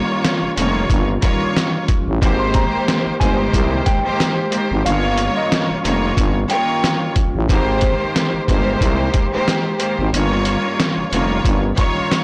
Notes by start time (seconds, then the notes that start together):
Already playing: G2 D#3 G3 A#3 C#4 F4 C#5
0.24 snare, closed hi-hat
0.43 F1
0.56 F1 G2 D#3 A#3 F4 C#5, closed hi-hat
0.90 G1, kick, closed hi-hat
1.22 G2 D#3 A#3 F4 C#5, kick, closed hi-hat
1.56 snare, closed hi-hat
1.88 kick, closed hi-hat
2.08 A1
2.22 G#1 G#2 D#3 G#3 A#3 G4 C5, kick, closed hi-hat
2.40 C6
2.54 A#5, kick, closed hi-hat
2.88 snare, closed hi-hat
3.07 G1
3.20 G1 D#3 G#3 A#3 G4 C5 G#5, kick, closed hi-hat
3.54 C2, kick, closed hi-hat
3.86 G5, kick, closed hi-hat
4.04 G#2 D#3 A#3 G4 C5
4.20 snare, closed hi-hat
4.50 G#2 D#3 A#3 G4 C5, closed hi-hat
4.71 G#1
4.84 G1 G2 D#3 G3 A#3 C#4 F4 C#5 F5, closed hi-hat
5.18 closed hi-hat
5.37 D#5
5.52 snare, closed hi-hat
5.70 F1
5.83 F1 G2 D#3 A#3 F4 C#5, closed hi-hat
6.17 G1, kick, closed hi-hat
6.49 G2 D#3 A#3 F4 C#5 G5, closed hi-hat
6.84 snare, closed hi-hat
7.16 kick, closed hi-hat
7.35 A1
7.49 G#1 G#2 D#3 G#3 A#3 G4 C5, kick, closed hi-hat
7.81 kick, closed hi-hat
8.16 snare, closed hi-hat
8.34 G1
8.48 G1 D#3 G#3 A#3 G4 C5, kick, closed hi-hat
8.81 C2, kick, closed hi-hat
9.14 kick, closed hi-hat
9.32 G#2 D#3 A#3 G4 C5
9.48 snare, closed hi-hat
9.78 G#2 D#3 A#3 G4 C5, closed hi-hat
9.99 G#1
10.12 G1 G2 D#3 G3 A#3 C#4 F4 C#5, closed hi-hat
10.45 closed hi-hat
10.80 snare, closed hi-hat
10.98 F1
11.11 F1 G2 D#3 A#3 F4 C#5, closed hi-hat
11.45 G1, kick, closed hi-hat
11.76 G2 D#3 A#3 F4 C#5, kick, closed hi-hat
12.12 snare, closed hi-hat